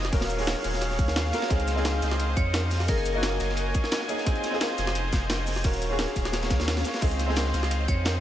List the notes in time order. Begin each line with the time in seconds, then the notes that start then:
Already playing: F1 C4 D#4 F4 G#4 C5
0.05 snare
0.12 D#1 F#3 C#4 F4 F#4 A#4 C#5 F5, kick, snare, closed hi-hat, open hi-hat
0.21 snare, closed hi-hat, ride
0.30 closed hi-hat, shaker
0.37 C#4 F4 F#4 G#4, snare, open hi-hat
0.47 snare, closed hi-hat, ride
0.64 D#1, snare, open hi-hat, shaker
0.73 snare
0.81 snare, closed hi-hat, ride
0.90 snare
0.99 D#2, kick, closed hi-hat, shaker
1.08 snare
1.16 snare, closed hi-hat, ride
1.25 snare
1.32 C#4 F4 F#4 A#4, snare, closed hi-hat, ride, shaker
1.42 snare, ride
1.49 C#2 C4 D#4 F4 G#4 C5 D#5, kick, closed hi-hat, ride
1.60 closed hi-hat
1.68 snare, closed hi-hat, ride, shaker
1.75 C4 D#4 F4 G#4, snare
1.85 snare, closed hi-hat, ride
1.94 snare
2.02 C#2, snare, closed hi-hat, ride, shaker
2.11 snare
2.20 closed hi-hat, ride
2.37 F2 C#5, kick, closed hi-hat, shaker
2.53 snare, closed hi-hat, ride
2.70 snare, closed hi-hat, open hi-hat, shaker
2.80 snare
2.87 F#1 A#3 C#4 D#4 G#4 A#4 G#5, kick, closed hi-hat, ride
2.98 A#4, closed hi-hat
3.06 closed hi-hat, ride, shaker
3.13 A#3 C#4 D#4
3.17 F#4
3.23 snare, closed hi-hat, ride
3.40 F#1, open hi-hat, ride, shaker
3.49 snare
3.57 closed hi-hat, ride
3.74 kick, closed hi-hat, ride, shaker
3.84 snare
3.92 snare, closed hi-hat, ride
4.02 snare
4.08 A#3 C#4 D#4 G#4, closed hi-hat, ride, shaker
4.18 snare
4.25 C4 D#4 F4 G#4 C5 D#5, kick, closed hi-hat, ride
4.36 closed hi-hat
4.44 snare, closed hi-hat, ride, shaker
4.51 C4 D#4 F4, snare
4.55 G#4
4.61 snare, closed hi-hat, ride
4.70 snare
4.78 F1, snare, closed hi-hat, ride, shaker
4.87 snare
4.95 closed hi-hat, ride
5.13 F1, kick, snare, closed hi-hat, ride, shaker
5.30 snare, closed hi-hat, ride
5.47 snare, closed hi-hat, open hi-hat, shaker
5.56 snare
5.64 D#1 C#4 F4 F#4 A#4 C#5 F5, kick, closed hi-hat, ride
5.74 closed hi-hat, shaker
5.82 closed hi-hat, ride, shaker
5.89 C#4 F4 F#4
5.93 G#4
5.99 snare, closed hi-hat, ride
6.08 shaker
6.16 D#1, kick, open hi-hat, ride, shaker
6.24 snare, closed hi-hat
6.32 snare, closed hi-hat, ride, swell
6.43 snare, closed hi-hat, ride, shaker
6.49 D#2, kick, snare, closed hi-hat, ride, shaker
6.60 snare, ride
6.68 snare, closed hi-hat, ride
6.77 snare, ride, shaker
6.84 snare, closed hi-hat, ride, shaker
6.94 snare, closed hi-hat, ride
7.01 C#2 C4 D#4 F4 G#4 C5 D#5, kick, closed hi-hat, crash, ride
7.11 closed hi-hat
7.19 snare, closed hi-hat, ride, shaker
7.26 C4 D#4 F4 G#4, snare
7.36 snare, closed hi-hat, ride
7.46 snare
7.54 C#2, snare, closed hi-hat, ride, shaker
7.63 snare
7.71 closed hi-hat, ride
7.88 F2 C#5, kick, closed hi-hat, shaker
8.05 snare, closed hi-hat, ride